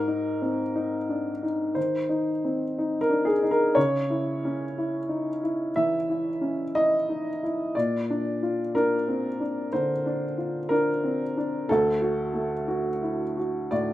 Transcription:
0.00 1.73 G#2 medium
0.00 1.76 A#4 medium
0.08 0.62 D#4 soft
0.42 0.96 C4 soft
0.75 1.29 D#4 soft
1.09 1.43 D4 soft
1.43 1.96 D#4 soft
1.75 2.29 D#3 soft
1.75 3.00 C5 medium
2.09 2.63 D#4 soft
2.45 2.97 C4 soft
2.78 3.30 D#4 soft
3.01 3.26 A#4 medium
3.10 3.43 D4 soft
3.25 3.50 G#4 medium
3.43 3.76 D#4 soft
3.51 3.76 A#4 medium
3.75 5.71 C#3 medium
3.75 5.74 C#5 medium
4.10 4.63 E4 soft
4.45 4.97 C#4 soft
4.78 5.29 E4 soft
5.09 5.42 D#4 soft
5.43 5.95 E4 soft
5.76 6.29 E3 soft
5.76 6.75 E5 medium
6.09 6.62 E4 soft
6.41 6.95 C#4 soft
6.75 7.28 E4 soft
6.75 7.74 D#5 medium
7.09 7.42 D#4 soft
7.43 7.75 E4 soft
7.75 9.68 A#2 medium
7.75 8.73 D5 medium
8.10 8.61 D4 soft
8.43 8.94 F4 soft
8.75 9.27 D4 soft
8.75 9.72 A#4 medium
9.08 9.40 C4 soft
9.40 9.92 D4 soft
9.73 10.25 D3 soft
9.73 10.70 C5 medium
10.06 10.57 D4 soft
10.38 10.89 F4 soft
10.69 11.22 D4 soft
10.69 11.68 A#4 medium
11.04 11.36 C4 soft
11.37 11.69 D4 soft
11.69 13.67 D2 medium
11.69 13.70 A4 medium
12.02 12.53 F#4 soft
12.34 12.87 A3 soft
12.68 13.22 F#4 medium
13.03 13.36 E4 soft
13.37 13.91 F#4 soft
13.71 13.93 A2 soft
13.71 13.93 D5 medium

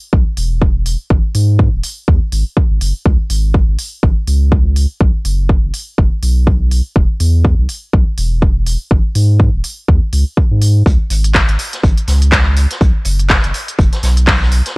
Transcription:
0.13 0.24 B1 medium
0.13 kick loud
0.37 0.96 E1 medium
0.37 open hi-hat loud
0.62 kick loud
0.86 open hi-hat loud
1.10 1.22 G#1 medium
1.10 kick loud
1.35 1.69 G#2 medium
1.35 open hi-hat loud
1.59 kick loud
1.73 1.82 D#1 medium
1.84 open hi-hat loud
2.08 2.20 D#2 medium
2.08 kick loud
2.32 2.44 G#1 medium
2.32 open hi-hat medium
2.57 kick loud
2.71 2.79 G#1 medium
2.81 2.93 F#1 medium
2.81 open hi-hat loud
3.06 3.17 C#2 medium
3.06 kick loud
3.30 3.64 G#1 medium
3.30 open hi-hat loud
3.54 kick medium
3.68 3.77 G#1 medium
3.79 open hi-hat loud
4.03 4.15 G#1 medium
4.03 kick loud
4.27 4.86 C#2 medium
4.27 open hi-hat medium
4.52 kick loud
4.76 open hi-hat loud
5.01 5.12 B1 medium
5.01 kick loud
5.25 5.60 F#1 medium
5.25 open hi-hat loud
5.49 kick loud
5.63 5.72 F#1 medium
5.74 open hi-hat loud
5.98 6.10 F#1 medium
5.98 kick loud
6.23 6.81 B1 medium
6.23 open hi-hat medium
6.47 kick loud
6.71 open hi-hat medium
6.96 7.07 E1 medium
6.96 kick loud
7.20 7.55 E2 medium
7.20 open hi-hat loud
7.45 kick loud
7.59 7.67 B1 medium
7.69 open hi-hat medium
7.93 8.05 B1 medium
7.93 kick loud
8.18 8.77 E1 medium
8.18 open hi-hat loud
8.42 kick loud
8.66 open hi-hat medium
8.91 9.03 G#1 medium
8.91 kick loud
9.15 9.50 G#2 medium
9.15 open hi-hat loud
9.40 kick loud
9.54 9.62 D#1 medium
9.64 open hi-hat loud
9.88 10.00 D#2 medium
9.88 kick loud
10.13 10.24 C#2 medium
10.13 open hi-hat loud
10.37 kick loud
10.51 10.83 G#2 medium
10.62 open hi-hat loud
10.86 10.98 C#2 medium
10.86 kick loud
10.86 closed hi-hat medium
11.10 11.45 G#1 medium
11.10 closed hi-hat medium
11.10 open hi-hat loud
11.24 closed hi-hat medium
11.35 kick medium
11.35 snare loud
11.35 clap loud
11.35 closed hi-hat medium
11.48 11.57 G#1 medium
11.48 closed hi-hat soft
11.48 closed hi-hat medium
11.59 closed hi-hat medium
11.59 open hi-hat loud
11.73 snare soft
11.73 closed hi-hat medium
11.84 11.95 G#1 medium
11.84 kick loud
11.84 closed hi-hat medium
11.98 closed hi-hat medium
12.07 12.67 C#2 medium
12.07 snare soft
12.07 closed hi-hat medium
12.07 open hi-hat loud
12.22 closed hi-hat medium
12.32 kick loud
12.32 snare loud
12.32 clap loud
12.32 closed hi-hat medium
12.57 closed hi-hat medium
12.57 open hi-hat loud
12.71 snare soft
12.71 closed hi-hat medium
12.81 12.93 B1 medium
12.81 kick loud
12.81 closed hi-hat medium
13.05 13.40 F#1 medium
13.05 closed hi-hat medium
13.05 open hi-hat loud
13.20 closed hi-hat medium
13.30 kick loud
13.30 snare loud
13.30 clap loud
13.30 closed hi-hat medium
13.44 13.52 F#1 medium
13.44 closed hi-hat medium
13.54 closed hi-hat medium
13.54 open hi-hat loud
13.68 closed hi-hat medium
13.78 13.90 F#1 medium
13.78 kick loud
13.78 closed hi-hat medium
13.93 snare soft
13.93 closed hi-hat medium
14.03 14.62 B1 medium
14.03 snare medium
14.03 closed hi-hat medium
14.03 open hi-hat loud
14.17 closed hi-hat medium
14.27 kick loud
14.27 snare loud
14.27 clap loud
14.27 open hi-hat medium
14.42 snare medium
14.52 closed hi-hat medium
14.52 open hi-hat loud
14.66 snare medium
14.66 closed hi-hat medium

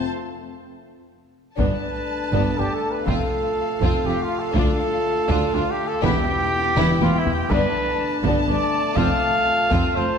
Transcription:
1.56 1.66 G1 medium
1.56 1.66 G2 medium
1.56 4.51 A3 medium
1.56 1.82 B3 soft
1.56 1.81 D4 medium
1.56 3.03 D4 medium
1.56 2.60 B4 medium
1.56 3.02 A5 soft
1.56 taiko medium
2.32 2.41 G1 medium
2.32 2.40 G2 medium
2.32 2.56 B3 soft
2.32 2.56 D4 soft
2.32 taiko medium
2.57 2.66 G1 soft
2.57 2.65 G2 soft
2.57 2.66 B3 soft
2.57 2.66 D4 soft
2.57 2.76 G4 medium
2.74 2.93 A4 medium
2.91 3.07 B4 medium
3.06 3.15 F1 medium
3.06 3.14 F2 medium
3.06 3.30 C4 soft
3.06 3.31 F4 medium
3.06 5.99 F4 medium
3.06 4.07 A4 medium
3.06 5.99 F5 soft
3.06 taiko medium
3.81 3.89 F1 medium
3.81 3.89 F2 medium
3.81 4.04 C4 soft
3.81 4.05 F4 medium
3.81 taiko medium
4.05 4.13 F1 soft
4.05 4.14 F2 soft
4.05 4.13 C4 soft
4.05 4.15 F4 soft
4.05 4.24 G4 medium
4.22 4.41 F4 medium
4.39 4.55 A4 medium
4.54 4.62 D2 medium
4.54 4.63 D2 medium
4.54 5.98 A3 medium
4.54 4.77 D4 medium
4.54 4.78 F4 medium
4.54 5.56 A4 medium
4.54 taiko medium
5.28 5.37 D2 medium
5.28 5.52 D4 medium
5.28 5.52 F4 medium
5.28 taiko medium
5.54 5.62 D2 soft
5.54 5.62 D4 soft
5.54 5.62 F4 soft
5.54 5.72 F4 medium
5.71 5.89 G4 medium
5.87 6.03 A4 medium
6.03 6.11 E1 medium
6.03 6.11 E2 medium
6.03 6.73 E2 medium
6.03 7.46 B3 medium
6.03 6.26 B3 medium
6.03 7.46 E4 medium
6.03 6.26 E4 medium
6.03 7.00 G4 medium
6.03 7.48 G5 medium
6.03 taiko medium
6.77 6.85 E1 medium
6.77 6.85 E2 medium
6.77 6.99 B3 medium
6.77 7.00 E4 medium
6.77 taiko mid medium
7.00 7.10 E1 medium
7.00 7.09 E2 soft
7.00 7.08 B3 medium
7.00 7.09 E4 medium
7.00 7.19 F4 medium
7.00 taiko high medium
7.18 7.34 E4 medium
7.26 taiko low medium
7.34 7.52 G4 medium
7.49 7.59 G1 medium
7.49 7.58 G2 medium
7.49 10.18 A3 medium
7.49 7.73 B3 medium
7.49 7.74 D4 medium
7.49 8.80 D4 medium
7.49 8.21 B4 loud
7.49 10.18 A5 medium
7.49 taiko medium
8.24 8.32 G1 medium
8.24 8.32 G2 medium
8.24 8.46 B3 medium
8.24 8.47 D4 medium
8.24 taiko medium
8.47 8.56 G1 medium
8.47 8.57 G2 soft
8.47 8.55 B3 medium
8.47 8.56 D4 soft
8.47 8.98 D5 medium
8.95 9.05 F1 medium
8.95 9.06 F2 medium
8.95 9.20 C4 medium
8.95 9.19 F4 medium
8.95 10.18 F4 medium
8.95 9.98 F5 loud
8.95 taiko medium
9.70 9.79 F1 medium
9.70 9.79 F2 medium
9.70 9.94 C4 medium
9.70 9.93 F4 medium
9.70 taiko medium
9.95 10.03 F1 soft
9.95 10.05 F2 soft
9.95 10.04 C4 medium
9.95 10.03 F4 soft
9.95 10.18 C5 medium

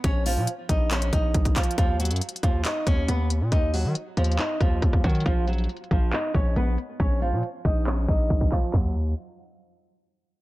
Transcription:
0.04 0.38 A#1 loud
0.04 0.24 C#4 loud
0.04 0.25 C#5 medium
0.04 kick loud
0.04 closed hi-hat medium
0.26 0.47 F3 medium
0.26 0.46 F4 medium
0.26 open hi-hat medium
0.37 0.47 A#2 loud
0.47 closed hi-hat medium
0.69 1.11 A#1 loud
0.69 0.90 D#4 medium
0.69 0.90 D#5 medium
0.69 kick loud
0.69 closed hi-hat medium
0.91 1.11 C#4 medium
0.91 1.12 C#5 medium
0.91 clap loud
0.91 closed hi-hat medium
1.02 closed hi-hat medium
1.13 1.34 A#1 loud
1.13 1.54 D#4 medium
1.13 1.54 D#5 medium
1.13 kick loud
1.13 closed hi-hat medium
1.34 1.55 A#1 loud
1.34 kick loud
1.34 closed hi-hat medium
1.45 kick medium
1.45 closed hi-hat medium
1.56 1.77 F3 medium
1.56 1.77 F4 medium
1.56 kick medium
1.56 clap medium
1.56 closed hi-hat medium
1.63 closed hi-hat medium
1.71 closed hi-hat medium
1.78 2.12 D#2 loud
1.78 1.99 F3 medium
1.78 1.98 F4 loud
1.78 kick loud
1.78 closed hi-hat medium
2.00 2.20 F#3 medium
2.00 2.20 F#4 medium
2.00 closed hi-hat medium
2.05 closed hi-hat medium
2.11 2.21 F#2 loud
2.11 closed hi-hat soft
2.16 closed hi-hat soft
2.21 closed hi-hat medium
2.29 closed hi-hat medium
2.36 closed hi-hat soft
2.43 2.64 D#2 loud
2.43 2.64 F3 medium
2.43 2.64 F4 medium
2.43 kick medium
2.43 closed hi-hat medium
2.65 2.85 D#4 medium
2.65 2.86 D#5 medium
2.65 clap loud
2.65 closed hi-hat medium
2.87 3.08 D#2 loud
2.87 3.07 C#4 medium
2.87 3.07 C#5 medium
2.87 kick loud
2.87 closed hi-hat medium
3.08 3.43 D#2 loud
3.08 3.29 B3 medium
3.08 3.29 B4 medium
3.08 closed hi-hat medium
3.30 closed hi-hat medium
3.41 3.51 A#2 loud
3.52 3.86 D#2 loud
3.52 3.72 D#4 loud
3.52 3.73 D#5 medium
3.52 kick loud
3.52 closed hi-hat medium
3.74 3.94 F#3 medium
3.74 3.94 F#4 medium
3.74 open hi-hat medium
3.85 3.95 D#3 loud
3.95 closed hi-hat medium
4.17 4.38 D#2 loud
4.17 4.38 F3 medium
4.17 4.37 F4 medium
4.17 closed hi-hat soft
4.24 closed hi-hat medium
4.32 closed hi-hat medium
4.39 4.59 D#4 medium
4.39 4.60 D#5 medium
4.39 clap loud
4.39 closed hi-hat medium
4.61 4.81 D#2 loud
4.61 5.02 F3 medium
4.61 5.02 F4 medium
4.61 kick loud
4.61 closed hi-hat medium
4.82 4.93 D#2 loud
4.82 kick loud
4.82 closed hi-hat medium
4.93 5.04 D#2 loud
4.93 kick medium
5.04 5.25 D#3 loud
5.04 5.25 F#3 medium
5.04 5.24 F#4 medium
5.04 kick medium
5.04 closed hi-hat medium
5.09 closed hi-hat medium
5.15 closed hi-hat medium
5.20 closed hi-hat medium
5.26 5.68 A#1 loud
5.26 5.47 F3 medium
5.26 5.46 F4 loud
5.26 kick loud
5.26 closed hi-hat medium
5.48 5.68 F#3 medium
5.48 5.68 F#4 medium
5.48 closed hi-hat medium
5.53 closed hi-hat medium
5.58 closed hi-hat soft
5.64 closed hi-hat soft
5.69 closed hi-hat medium
5.77 closed hi-hat medium
5.84 closed hi-hat soft
5.91 6.12 A#1 loud
5.91 6.12 F3 medium
5.91 6.11 F4 medium
5.91 kick medium
5.91 closed hi-hat medium
6.13 6.33 D#4 medium
6.13 6.34 D#5 medium
6.13 clap loud
6.13 closed hi-hat medium
6.34 6.55 A#1 loud
6.34 6.55 C#4 medium
6.34 6.55 C#5 medium
6.34 kick loud
6.34 closed hi-hat medium
6.56 6.77 A#1 loud
6.56 6.77 B3 medium
6.56 6.77 B4 medium
6.56 closed hi-hat medium
6.78 closed hi-hat medium
7.00 7.34 A#1 loud
7.00 7.20 C#4 loud
7.00 7.21 C#5 medium
7.00 kick loud
7.00 closed hi-hat medium
7.22 7.42 F3 medium
7.22 7.42 F4 medium
7.22 open hi-hat medium
7.32 7.43 A#2 loud
7.43 closed hi-hat medium
7.65 8.07 A#1 loud
7.65 7.85 D#4 medium
7.65 7.86 D#5 medium
7.65 kick medium
7.65 closed hi-hat medium
7.87 8.07 C#4 medium
7.87 8.07 C#5 medium
7.87 clap loud
7.87 closed hi-hat medium
7.98 closed hi-hat medium
8.08 8.29 A#1 loud
8.08 8.49 D#4 medium
8.08 8.50 D#5 medium
8.08 kick loud
8.08 closed hi-hat medium
8.30 8.51 A#1 loud
8.30 kick loud
8.30 closed hi-hat medium
8.41 kick medium
8.41 closed hi-hat medium
8.52 8.73 F3 medium
8.52 8.72 F4 medium
8.52 kick medium
8.52 clap medium
8.52 closed hi-hat medium
8.59 closed hi-hat medium
8.66 closed hi-hat medium
8.74 9.14 D#2 loud
8.74 8.94 F#3 medium
8.74 kick loud
8.74 clap medium
8.74 floor tom loud

